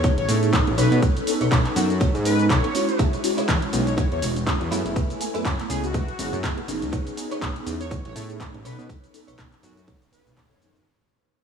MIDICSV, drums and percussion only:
0, 0, Header, 1, 2, 480
1, 0, Start_track
1, 0, Tempo, 491803
1, 1001, Time_signature, 4, 2, 24, 8
1, 11164, End_track
2, 0, Start_track
2, 0, Title_t, "Drums"
2, 38, Note_on_c, 9, 42, 90
2, 40, Note_on_c, 9, 36, 124
2, 43, Note_on_c, 9, 82, 44
2, 135, Note_off_c, 9, 42, 0
2, 137, Note_off_c, 9, 36, 0
2, 141, Note_off_c, 9, 82, 0
2, 174, Note_on_c, 9, 42, 42
2, 272, Note_off_c, 9, 42, 0
2, 279, Note_on_c, 9, 46, 105
2, 284, Note_on_c, 9, 82, 75
2, 377, Note_off_c, 9, 46, 0
2, 382, Note_off_c, 9, 82, 0
2, 417, Note_on_c, 9, 42, 39
2, 423, Note_on_c, 9, 82, 32
2, 515, Note_off_c, 9, 42, 0
2, 520, Note_off_c, 9, 82, 0
2, 520, Note_on_c, 9, 36, 117
2, 521, Note_on_c, 9, 42, 94
2, 525, Note_on_c, 9, 39, 124
2, 526, Note_on_c, 9, 82, 42
2, 617, Note_off_c, 9, 36, 0
2, 618, Note_off_c, 9, 42, 0
2, 622, Note_off_c, 9, 39, 0
2, 624, Note_off_c, 9, 82, 0
2, 657, Note_on_c, 9, 42, 37
2, 755, Note_off_c, 9, 42, 0
2, 761, Note_on_c, 9, 46, 112
2, 766, Note_on_c, 9, 82, 81
2, 858, Note_off_c, 9, 46, 0
2, 863, Note_off_c, 9, 82, 0
2, 897, Note_on_c, 9, 42, 37
2, 903, Note_on_c, 9, 82, 31
2, 995, Note_off_c, 9, 42, 0
2, 1000, Note_off_c, 9, 82, 0
2, 1000, Note_on_c, 9, 36, 125
2, 1001, Note_on_c, 9, 42, 91
2, 1006, Note_on_c, 9, 82, 45
2, 1097, Note_off_c, 9, 36, 0
2, 1098, Note_off_c, 9, 42, 0
2, 1104, Note_off_c, 9, 82, 0
2, 1138, Note_on_c, 9, 42, 37
2, 1143, Note_on_c, 9, 82, 32
2, 1235, Note_off_c, 9, 42, 0
2, 1241, Note_off_c, 9, 82, 0
2, 1241, Note_on_c, 9, 46, 112
2, 1246, Note_on_c, 9, 82, 77
2, 1338, Note_off_c, 9, 46, 0
2, 1344, Note_off_c, 9, 82, 0
2, 1376, Note_on_c, 9, 42, 40
2, 1381, Note_on_c, 9, 82, 34
2, 1473, Note_off_c, 9, 42, 0
2, 1479, Note_off_c, 9, 82, 0
2, 1479, Note_on_c, 9, 42, 86
2, 1480, Note_on_c, 9, 36, 110
2, 1483, Note_on_c, 9, 39, 120
2, 1485, Note_on_c, 9, 82, 46
2, 1577, Note_off_c, 9, 42, 0
2, 1578, Note_off_c, 9, 36, 0
2, 1581, Note_off_c, 9, 39, 0
2, 1582, Note_off_c, 9, 82, 0
2, 1615, Note_on_c, 9, 42, 40
2, 1619, Note_on_c, 9, 39, 37
2, 1713, Note_off_c, 9, 42, 0
2, 1717, Note_off_c, 9, 39, 0
2, 1719, Note_on_c, 9, 46, 110
2, 1724, Note_on_c, 9, 82, 74
2, 1816, Note_off_c, 9, 46, 0
2, 1822, Note_off_c, 9, 82, 0
2, 1857, Note_on_c, 9, 42, 39
2, 1862, Note_on_c, 9, 82, 33
2, 1954, Note_off_c, 9, 42, 0
2, 1959, Note_off_c, 9, 82, 0
2, 1960, Note_on_c, 9, 36, 123
2, 1960, Note_on_c, 9, 42, 88
2, 1965, Note_on_c, 9, 82, 44
2, 2058, Note_off_c, 9, 36, 0
2, 2058, Note_off_c, 9, 42, 0
2, 2063, Note_off_c, 9, 82, 0
2, 2098, Note_on_c, 9, 42, 39
2, 2103, Note_on_c, 9, 82, 31
2, 2195, Note_off_c, 9, 42, 0
2, 2200, Note_off_c, 9, 82, 0
2, 2200, Note_on_c, 9, 46, 105
2, 2205, Note_on_c, 9, 82, 80
2, 2297, Note_off_c, 9, 46, 0
2, 2303, Note_off_c, 9, 82, 0
2, 2337, Note_on_c, 9, 42, 37
2, 2342, Note_on_c, 9, 82, 34
2, 2435, Note_off_c, 9, 42, 0
2, 2440, Note_off_c, 9, 82, 0
2, 2440, Note_on_c, 9, 36, 110
2, 2441, Note_on_c, 9, 42, 90
2, 2445, Note_on_c, 9, 39, 118
2, 2446, Note_on_c, 9, 82, 43
2, 2538, Note_off_c, 9, 36, 0
2, 2538, Note_off_c, 9, 42, 0
2, 2542, Note_off_c, 9, 39, 0
2, 2544, Note_off_c, 9, 82, 0
2, 2578, Note_on_c, 9, 42, 38
2, 2675, Note_off_c, 9, 42, 0
2, 2682, Note_on_c, 9, 46, 111
2, 2687, Note_on_c, 9, 82, 74
2, 2780, Note_off_c, 9, 46, 0
2, 2785, Note_off_c, 9, 82, 0
2, 2817, Note_on_c, 9, 42, 37
2, 2822, Note_on_c, 9, 82, 32
2, 2915, Note_off_c, 9, 42, 0
2, 2920, Note_off_c, 9, 82, 0
2, 2921, Note_on_c, 9, 36, 117
2, 2921, Note_on_c, 9, 42, 88
2, 2926, Note_on_c, 9, 82, 48
2, 3018, Note_off_c, 9, 36, 0
2, 3018, Note_off_c, 9, 42, 0
2, 3024, Note_off_c, 9, 82, 0
2, 3058, Note_on_c, 9, 42, 39
2, 3063, Note_on_c, 9, 82, 32
2, 3155, Note_off_c, 9, 42, 0
2, 3160, Note_off_c, 9, 82, 0
2, 3161, Note_on_c, 9, 46, 105
2, 3166, Note_on_c, 9, 82, 81
2, 3258, Note_off_c, 9, 46, 0
2, 3264, Note_off_c, 9, 82, 0
2, 3299, Note_on_c, 9, 42, 40
2, 3304, Note_on_c, 9, 82, 36
2, 3397, Note_off_c, 9, 42, 0
2, 3401, Note_on_c, 9, 36, 105
2, 3402, Note_off_c, 9, 82, 0
2, 3402, Note_on_c, 9, 42, 88
2, 3406, Note_on_c, 9, 39, 122
2, 3407, Note_on_c, 9, 82, 46
2, 3498, Note_off_c, 9, 36, 0
2, 3500, Note_off_c, 9, 42, 0
2, 3503, Note_off_c, 9, 39, 0
2, 3505, Note_off_c, 9, 82, 0
2, 3536, Note_on_c, 9, 42, 39
2, 3634, Note_off_c, 9, 42, 0
2, 3640, Note_on_c, 9, 46, 106
2, 3645, Note_on_c, 9, 82, 83
2, 3737, Note_off_c, 9, 46, 0
2, 3743, Note_off_c, 9, 82, 0
2, 3778, Note_on_c, 9, 42, 38
2, 3783, Note_on_c, 9, 82, 35
2, 3876, Note_off_c, 9, 42, 0
2, 3881, Note_off_c, 9, 82, 0
2, 3881, Note_on_c, 9, 36, 120
2, 3882, Note_on_c, 9, 42, 90
2, 3887, Note_on_c, 9, 82, 45
2, 3979, Note_off_c, 9, 36, 0
2, 3979, Note_off_c, 9, 42, 0
2, 3985, Note_off_c, 9, 82, 0
2, 4019, Note_on_c, 9, 42, 40
2, 4117, Note_off_c, 9, 42, 0
2, 4122, Note_on_c, 9, 46, 104
2, 4128, Note_on_c, 9, 82, 79
2, 4220, Note_off_c, 9, 46, 0
2, 4225, Note_off_c, 9, 82, 0
2, 4260, Note_on_c, 9, 42, 39
2, 4265, Note_on_c, 9, 82, 35
2, 4357, Note_off_c, 9, 42, 0
2, 4361, Note_on_c, 9, 36, 104
2, 4363, Note_off_c, 9, 82, 0
2, 4364, Note_on_c, 9, 42, 87
2, 4368, Note_on_c, 9, 39, 114
2, 4370, Note_on_c, 9, 82, 44
2, 4459, Note_off_c, 9, 36, 0
2, 4462, Note_off_c, 9, 42, 0
2, 4466, Note_off_c, 9, 39, 0
2, 4467, Note_off_c, 9, 82, 0
2, 4499, Note_on_c, 9, 42, 38
2, 4597, Note_off_c, 9, 42, 0
2, 4604, Note_on_c, 9, 46, 110
2, 4610, Note_on_c, 9, 82, 80
2, 4702, Note_off_c, 9, 46, 0
2, 4707, Note_off_c, 9, 82, 0
2, 4740, Note_on_c, 9, 42, 38
2, 4746, Note_on_c, 9, 82, 34
2, 4838, Note_off_c, 9, 42, 0
2, 4841, Note_on_c, 9, 36, 115
2, 4843, Note_off_c, 9, 82, 0
2, 4845, Note_on_c, 9, 42, 95
2, 4850, Note_on_c, 9, 82, 49
2, 4939, Note_off_c, 9, 36, 0
2, 4942, Note_off_c, 9, 42, 0
2, 4947, Note_off_c, 9, 82, 0
2, 4980, Note_on_c, 9, 42, 40
2, 4985, Note_on_c, 9, 82, 34
2, 5078, Note_off_c, 9, 42, 0
2, 5082, Note_on_c, 9, 46, 101
2, 5083, Note_off_c, 9, 82, 0
2, 5087, Note_on_c, 9, 82, 83
2, 5179, Note_off_c, 9, 46, 0
2, 5185, Note_off_c, 9, 82, 0
2, 5219, Note_on_c, 9, 42, 43
2, 5224, Note_on_c, 9, 82, 36
2, 5317, Note_off_c, 9, 42, 0
2, 5321, Note_on_c, 9, 36, 108
2, 5322, Note_off_c, 9, 82, 0
2, 5322, Note_on_c, 9, 42, 95
2, 5326, Note_on_c, 9, 39, 118
2, 5327, Note_on_c, 9, 82, 45
2, 5419, Note_off_c, 9, 36, 0
2, 5420, Note_off_c, 9, 42, 0
2, 5424, Note_off_c, 9, 39, 0
2, 5425, Note_off_c, 9, 82, 0
2, 5461, Note_on_c, 9, 42, 43
2, 5464, Note_on_c, 9, 39, 38
2, 5558, Note_off_c, 9, 42, 0
2, 5562, Note_off_c, 9, 39, 0
2, 5562, Note_on_c, 9, 46, 105
2, 5567, Note_on_c, 9, 82, 81
2, 5660, Note_off_c, 9, 46, 0
2, 5665, Note_off_c, 9, 82, 0
2, 5697, Note_on_c, 9, 42, 38
2, 5702, Note_on_c, 9, 82, 34
2, 5795, Note_off_c, 9, 42, 0
2, 5800, Note_off_c, 9, 82, 0
2, 5800, Note_on_c, 9, 42, 95
2, 5801, Note_on_c, 9, 36, 124
2, 5806, Note_on_c, 9, 82, 46
2, 5898, Note_off_c, 9, 36, 0
2, 5898, Note_off_c, 9, 42, 0
2, 5903, Note_off_c, 9, 82, 0
2, 5939, Note_on_c, 9, 42, 42
2, 6036, Note_off_c, 9, 42, 0
2, 6041, Note_on_c, 9, 46, 107
2, 6046, Note_on_c, 9, 82, 81
2, 6138, Note_off_c, 9, 46, 0
2, 6143, Note_off_c, 9, 82, 0
2, 6180, Note_on_c, 9, 42, 40
2, 6185, Note_on_c, 9, 82, 35
2, 6277, Note_off_c, 9, 42, 0
2, 6281, Note_on_c, 9, 36, 102
2, 6282, Note_off_c, 9, 82, 0
2, 6283, Note_on_c, 9, 42, 93
2, 6287, Note_on_c, 9, 39, 116
2, 6289, Note_on_c, 9, 82, 47
2, 6378, Note_off_c, 9, 36, 0
2, 6381, Note_off_c, 9, 42, 0
2, 6385, Note_off_c, 9, 39, 0
2, 6386, Note_off_c, 9, 82, 0
2, 6419, Note_on_c, 9, 42, 38
2, 6517, Note_off_c, 9, 42, 0
2, 6523, Note_on_c, 9, 46, 100
2, 6528, Note_on_c, 9, 82, 82
2, 6620, Note_off_c, 9, 46, 0
2, 6625, Note_off_c, 9, 82, 0
2, 6659, Note_on_c, 9, 42, 38
2, 6664, Note_on_c, 9, 82, 34
2, 6756, Note_off_c, 9, 42, 0
2, 6760, Note_on_c, 9, 36, 123
2, 6761, Note_off_c, 9, 82, 0
2, 6761, Note_on_c, 9, 42, 101
2, 6767, Note_on_c, 9, 82, 51
2, 6858, Note_off_c, 9, 36, 0
2, 6859, Note_off_c, 9, 42, 0
2, 6864, Note_off_c, 9, 82, 0
2, 6897, Note_on_c, 9, 42, 42
2, 6903, Note_on_c, 9, 82, 33
2, 6995, Note_off_c, 9, 42, 0
2, 7000, Note_off_c, 9, 82, 0
2, 7002, Note_on_c, 9, 46, 97
2, 7007, Note_on_c, 9, 82, 82
2, 7100, Note_off_c, 9, 46, 0
2, 7105, Note_off_c, 9, 82, 0
2, 7139, Note_on_c, 9, 42, 45
2, 7144, Note_on_c, 9, 82, 37
2, 7237, Note_off_c, 9, 42, 0
2, 7240, Note_on_c, 9, 36, 105
2, 7242, Note_off_c, 9, 82, 0
2, 7243, Note_on_c, 9, 42, 98
2, 7246, Note_on_c, 9, 39, 118
2, 7248, Note_on_c, 9, 82, 48
2, 7338, Note_off_c, 9, 36, 0
2, 7340, Note_off_c, 9, 42, 0
2, 7344, Note_off_c, 9, 39, 0
2, 7345, Note_off_c, 9, 82, 0
2, 7380, Note_on_c, 9, 42, 41
2, 7477, Note_off_c, 9, 42, 0
2, 7482, Note_on_c, 9, 46, 102
2, 7487, Note_on_c, 9, 82, 86
2, 7579, Note_off_c, 9, 46, 0
2, 7584, Note_off_c, 9, 82, 0
2, 7619, Note_on_c, 9, 42, 40
2, 7625, Note_on_c, 9, 82, 36
2, 7717, Note_off_c, 9, 42, 0
2, 7721, Note_on_c, 9, 36, 117
2, 7722, Note_off_c, 9, 82, 0
2, 7723, Note_on_c, 9, 42, 100
2, 7728, Note_on_c, 9, 82, 50
2, 7818, Note_off_c, 9, 36, 0
2, 7820, Note_off_c, 9, 42, 0
2, 7826, Note_off_c, 9, 82, 0
2, 7859, Note_on_c, 9, 42, 42
2, 7956, Note_off_c, 9, 42, 0
2, 7962, Note_on_c, 9, 46, 102
2, 7967, Note_on_c, 9, 82, 84
2, 8060, Note_off_c, 9, 46, 0
2, 8065, Note_off_c, 9, 82, 0
2, 8100, Note_on_c, 9, 42, 40
2, 8105, Note_on_c, 9, 82, 35
2, 8197, Note_off_c, 9, 42, 0
2, 8201, Note_on_c, 9, 36, 100
2, 8202, Note_off_c, 9, 82, 0
2, 8203, Note_on_c, 9, 42, 97
2, 8207, Note_on_c, 9, 39, 115
2, 8208, Note_on_c, 9, 82, 49
2, 8298, Note_off_c, 9, 36, 0
2, 8300, Note_off_c, 9, 42, 0
2, 8304, Note_off_c, 9, 39, 0
2, 8306, Note_off_c, 9, 82, 0
2, 8339, Note_on_c, 9, 42, 40
2, 8437, Note_off_c, 9, 42, 0
2, 8444, Note_on_c, 9, 46, 106
2, 8450, Note_on_c, 9, 82, 86
2, 8542, Note_off_c, 9, 46, 0
2, 8547, Note_off_c, 9, 82, 0
2, 8582, Note_on_c, 9, 42, 42
2, 8587, Note_on_c, 9, 82, 35
2, 8680, Note_off_c, 9, 42, 0
2, 8681, Note_on_c, 9, 36, 119
2, 8684, Note_on_c, 9, 42, 98
2, 8685, Note_off_c, 9, 82, 0
2, 8689, Note_on_c, 9, 82, 48
2, 8778, Note_off_c, 9, 36, 0
2, 8782, Note_off_c, 9, 42, 0
2, 8787, Note_off_c, 9, 82, 0
2, 8820, Note_on_c, 9, 42, 44
2, 8825, Note_on_c, 9, 82, 34
2, 8918, Note_off_c, 9, 42, 0
2, 8922, Note_on_c, 9, 46, 108
2, 8923, Note_off_c, 9, 82, 0
2, 8927, Note_on_c, 9, 82, 80
2, 9019, Note_off_c, 9, 46, 0
2, 9024, Note_off_c, 9, 82, 0
2, 9059, Note_on_c, 9, 42, 47
2, 9064, Note_on_c, 9, 82, 38
2, 9157, Note_off_c, 9, 42, 0
2, 9160, Note_on_c, 9, 42, 99
2, 9161, Note_on_c, 9, 36, 107
2, 9162, Note_off_c, 9, 82, 0
2, 9164, Note_on_c, 9, 39, 124
2, 9165, Note_on_c, 9, 82, 48
2, 9258, Note_off_c, 9, 36, 0
2, 9258, Note_off_c, 9, 42, 0
2, 9261, Note_off_c, 9, 39, 0
2, 9263, Note_off_c, 9, 82, 0
2, 9297, Note_on_c, 9, 42, 41
2, 9300, Note_on_c, 9, 39, 40
2, 9302, Note_on_c, 9, 82, 34
2, 9394, Note_off_c, 9, 42, 0
2, 9398, Note_off_c, 9, 39, 0
2, 9399, Note_off_c, 9, 82, 0
2, 9400, Note_on_c, 9, 46, 107
2, 9405, Note_on_c, 9, 82, 88
2, 9498, Note_off_c, 9, 46, 0
2, 9503, Note_off_c, 9, 82, 0
2, 9539, Note_on_c, 9, 42, 43
2, 9544, Note_on_c, 9, 82, 37
2, 9636, Note_off_c, 9, 42, 0
2, 9641, Note_on_c, 9, 36, 122
2, 9642, Note_off_c, 9, 82, 0
2, 9642, Note_on_c, 9, 42, 103
2, 9647, Note_on_c, 9, 82, 47
2, 9739, Note_off_c, 9, 36, 0
2, 9739, Note_off_c, 9, 42, 0
2, 9744, Note_off_c, 9, 82, 0
2, 9780, Note_on_c, 9, 42, 46
2, 9785, Note_on_c, 9, 82, 34
2, 9877, Note_off_c, 9, 42, 0
2, 9882, Note_off_c, 9, 82, 0
2, 9884, Note_on_c, 9, 46, 100
2, 9889, Note_on_c, 9, 82, 83
2, 9982, Note_off_c, 9, 46, 0
2, 9987, Note_off_c, 9, 82, 0
2, 10021, Note_on_c, 9, 42, 42
2, 10026, Note_on_c, 9, 82, 35
2, 10118, Note_off_c, 9, 42, 0
2, 10122, Note_on_c, 9, 36, 100
2, 10124, Note_off_c, 9, 82, 0
2, 10124, Note_on_c, 9, 42, 99
2, 10128, Note_on_c, 9, 39, 121
2, 10129, Note_on_c, 9, 82, 48
2, 10219, Note_off_c, 9, 36, 0
2, 10222, Note_off_c, 9, 42, 0
2, 10225, Note_off_c, 9, 39, 0
2, 10227, Note_off_c, 9, 82, 0
2, 10260, Note_on_c, 9, 42, 43
2, 10265, Note_on_c, 9, 82, 31
2, 10357, Note_off_c, 9, 42, 0
2, 10362, Note_off_c, 9, 82, 0
2, 10362, Note_on_c, 9, 46, 106
2, 10368, Note_on_c, 9, 82, 83
2, 10460, Note_off_c, 9, 46, 0
2, 10465, Note_off_c, 9, 82, 0
2, 10498, Note_on_c, 9, 42, 42
2, 10503, Note_on_c, 9, 82, 35
2, 10596, Note_off_c, 9, 42, 0
2, 10601, Note_off_c, 9, 82, 0
2, 11164, End_track
0, 0, End_of_file